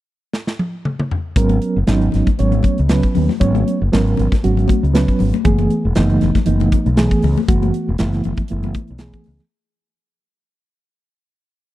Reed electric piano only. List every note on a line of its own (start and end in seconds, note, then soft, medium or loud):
1.36 1.77 F#3 medium
1.36 1.77 B3 medium
1.36 1.77 C#4 medium
1.36 1.78 A#4 medium
1.87 2.28 F#3 medium
1.87 2.28 B3 medium
1.87 2.29 C#4 medium
1.87 2.28 D#4 loud
2.38 2.79 F#3 medium
2.38 2.79 B3 medium
2.38 2.79 C#4 medium
2.38 2.80 C#5 medium
2.90 3.31 F#3 medium
2.90 3.31 B3 medium
2.90 3.31 C#4 medium
2.90 3.31 B4 medium
3.40 3.81 F#3 medium
3.40 3.81 B3 medium
3.40 3.81 C#4 medium
3.40 3.81 C#5 medium
3.92 4.33 F#3 medium
3.92 4.33 B3 medium
3.92 4.33 C#4 medium
3.92 4.34 A#4 medium
4.44 4.84 F#3 medium
4.44 4.84 B3 medium
4.44 4.84 C#4 medium
4.44 4.84 F#4 medium
4.94 5.35 F#3 medium
4.94 5.35 B3 medium
4.94 5.35 C#4 medium
4.94 5.35 B4 medium
5.44 5.86 E3 medium
5.44 5.86 A3 medium
5.44 5.86 B3 medium
5.44 5.86 G#4 loud
5.95 6.36 E3 medium
5.95 6.37 A3 medium
5.95 6.37 B3 medium
5.95 6.37 D#4 loud
6.46 6.87 E3 medium
6.46 6.87 A3 medium
6.46 6.87 B3 medium
6.46 6.88 D#4 medium
6.97 7.38 E3 medium
6.97 7.38 A3 medium
6.97 7.38 B3 medium
6.97 7.39 G#4 medium
7.48 7.89 E3 medium
7.48 7.89 A3 medium
7.48 7.89 B3 medium
7.48 7.89 F#4 medium
7.99 8.40 E3 medium
7.99 8.40 A3 medium
7.99 8.41 B3 medium
7.99 8.41 E4 medium
8.50 8.91 E3 medium
8.50 8.91 A3 medium
8.50 8.91 B3 medium
8.50 8.92 E4 medium
9.00 9.42 E3 medium
9.00 9.41 A3 medium
9.00 9.42 B3 medium
9.00 9.42 G#4 medium